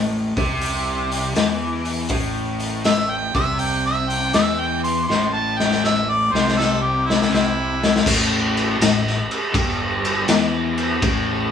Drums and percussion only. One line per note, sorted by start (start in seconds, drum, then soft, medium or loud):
0.37 kick medium
0.37 open hi-hat soft
0.61 open hi-hat medium
1.11 open hi-hat soft
1.36 snare loud
1.36 open hi-hat medium
1.85 open hi-hat soft
2.09 kick loud
2.09 open hi-hat medium
2.60 open hi-hat soft
2.84 snare loud
2.84 open hi-hat medium
3.34 kick medium
3.34 open hi-hat soft
3.59 open hi-hat medium
4.10 open hi-hat soft
4.33 snare loud
4.33 open hi-hat medium
4.84 open hi-hat soft
5.10 snare medium
5.60 snare medium
5.72 snare medium
5.84 snare medium
6.35 snare medium
6.48 snare medium
6.60 snare medium
7.10 snare medium
7.22 snare medium
7.34 snare medium
7.84 snare medium
7.96 snare medium
8.06 kick loud
8.06 crash loud
8.06 crash medium
8.57 crash medium
8.81 snare loud
8.81 crash medium
9.07 snare soft
9.31 crash medium
9.54 kick loud
9.54 crash medium
10.05 crash medium
10.28 snare loud
10.28 crash medium
10.78 crash medium
11.02 kick loud
11.02 crash medium